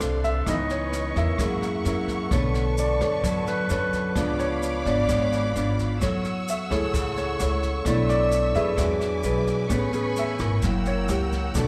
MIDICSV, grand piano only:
0, 0, Header, 1, 2, 480
1, 0, Start_track
1, 0, Tempo, 461538
1, 489, Time_signature, 4, 2, 24, 8
1, 12143, End_track
2, 0, Start_track
2, 0, Title_t, "Grand piano"
2, 0, Program_c, 0, 0
2, 0, Control_c, 0, 64, 127
2, 0, Note_on_c, 0, 55, 43
2, 0, Note_on_c, 0, 57, 37
2, 0, Note_on_c, 0, 62, 47
2, 0, Note_on_c, 0, 69, 64
2, 0, Note_on_c, 0, 71, 54
2, 0, Note_on_c, 0, 72, 64
2, 252, Note_on_c, 0, 76, 72
2, 483, Note_off_c, 0, 76, 0
2, 489, Note_on_c, 0, 52, 42
2, 500, Note_on_c, 0, 59, 38
2, 502, Note_off_c, 0, 62, 0
2, 503, Note_off_c, 0, 55, 0
2, 503, Control_c, 0, 64, 0
2, 504, Note_off_c, 0, 69, 0
2, 507, Note_on_c, 0, 63, 41
2, 509, Note_off_c, 0, 57, 0
2, 509, Note_off_c, 0, 72, 0
2, 512, Note_off_c, 0, 71, 0
2, 515, Note_on_c, 0, 75, 66
2, 704, Control_c, 0, 64, 127
2, 735, Note_off_c, 0, 75, 0
2, 741, Note_on_c, 0, 73, 65
2, 1182, Note_off_c, 0, 73, 0
2, 1227, Note_on_c, 0, 76, 60
2, 1408, Note_off_c, 0, 52, 0
2, 1413, Note_off_c, 0, 59, 0
2, 1417, Note_off_c, 0, 63, 0
2, 1454, Note_on_c, 0, 56, 37
2, 1461, Control_c, 0, 64, 0
2, 1461, Note_on_c, 0, 58, 37
2, 1467, Note_on_c, 0, 64, 43
2, 1636, Control_c, 0, 64, 127
2, 1772, Note_off_c, 0, 56, 0
2, 1775, Note_off_c, 0, 58, 0
2, 1778, Note_off_c, 0, 64, 0
2, 1897, Note_off_c, 0, 76, 0
2, 2407, Note_on_c, 0, 50, 41
2, 2409, Note_on_c, 0, 57, 37
2, 2424, Control_c, 0, 64, 0
2, 2607, Control_c, 0, 64, 127
2, 2906, Note_on_c, 0, 74, 60
2, 3577, Note_off_c, 0, 74, 0
2, 3619, Note_on_c, 0, 71, 65
2, 3845, Note_off_c, 0, 71, 0
2, 3861, Note_on_c, 0, 71, 64
2, 4288, Note_off_c, 0, 50, 0
2, 4289, Note_off_c, 0, 57, 0
2, 4316, Note_on_c, 0, 53, 46
2, 4325, Note_on_c, 0, 59, 38
2, 4330, Note_on_c, 0, 62, 47
2, 4345, Control_c, 0, 64, 0
2, 4519, Control_c, 0, 64, 127
2, 4535, Note_off_c, 0, 71, 0
2, 4572, Note_on_c, 0, 73, 73
2, 5018, Note_off_c, 0, 73, 0
2, 5058, Note_on_c, 0, 74, 61
2, 5288, Note_off_c, 0, 74, 0
2, 6203, Note_off_c, 0, 53, 0
2, 6207, Note_off_c, 0, 59, 0
2, 6209, Note_off_c, 0, 62, 0
2, 6263, Control_c, 0, 64, 0
2, 6431, Control_c, 0, 64, 127
2, 6757, Note_on_c, 0, 76, 58
2, 6963, Note_on_c, 0, 68, 42
2, 6973, Note_on_c, 0, 57, 35
2, 6979, Note_on_c, 0, 64, 47
2, 7423, Note_off_c, 0, 76, 0
2, 7462, Note_on_c, 0, 73, 62
2, 7651, Note_off_c, 0, 68, 0
2, 7657, Note_off_c, 0, 57, 0
2, 7660, Note_off_c, 0, 64, 0
2, 7690, Note_off_c, 0, 73, 0
2, 7723, Note_on_c, 0, 73, 58
2, 8158, Note_off_c, 0, 73, 0
2, 8171, Note_on_c, 0, 57, 43
2, 8174, Note_on_c, 0, 73, 38
2, 8180, Note_on_c, 0, 62, 39
2, 8184, Control_c, 0, 64, 0
2, 8186, Note_on_c, 0, 64, 48
2, 8390, Control_c, 0, 64, 127
2, 8419, Note_on_c, 0, 74, 76
2, 8491, Note_off_c, 0, 57, 0
2, 8492, Note_off_c, 0, 73, 0
2, 8495, Note_off_c, 0, 62, 0
2, 8499, Note_off_c, 0, 64, 0
2, 8862, Note_off_c, 0, 74, 0
2, 8898, Note_on_c, 0, 76, 68
2, 9128, Note_off_c, 0, 76, 0
2, 9128, Note_on_c, 0, 54, 36
2, 9133, Note_on_c, 0, 56, 36
2, 9138, Note_on_c, 0, 62, 42
2, 9144, Control_c, 0, 64, 0
2, 9330, Control_c, 0, 64, 127
2, 9814, Note_off_c, 0, 54, 0
2, 9817, Note_off_c, 0, 56, 0
2, 9819, Note_off_c, 0, 62, 0
2, 10091, Note_on_c, 0, 59, 41
2, 10096, Note_on_c, 0, 61, 42
2, 10105, Control_c, 0, 64, 0
2, 10294, Control_c, 0, 64, 127
2, 10411, Note_off_c, 0, 59, 0
2, 10413, Note_off_c, 0, 61, 0
2, 10597, Note_on_c, 0, 76, 62
2, 11063, Note_on_c, 0, 58, 37
2, 11064, Control_c, 0, 64, 0
2, 11068, Note_on_c, 0, 64, 42
2, 11261, Control_c, 0, 64, 127
2, 11263, Note_off_c, 0, 76, 0
2, 11308, Note_on_c, 0, 73, 67
2, 11533, Note_off_c, 0, 73, 0
2, 11552, Note_on_c, 0, 73, 51
2, 11742, Note_off_c, 0, 58, 0
2, 11745, Note_off_c, 0, 64, 0
2, 12010, Note_on_c, 0, 50, 45
2, 12015, Note_on_c, 0, 57, 40
2, 12025, Control_c, 0, 64, 0
2, 12143, Note_off_c, 0, 50, 0
2, 12143, Note_off_c, 0, 57, 0
2, 12143, Note_off_c, 0, 73, 0
2, 12143, End_track
0, 0, End_of_file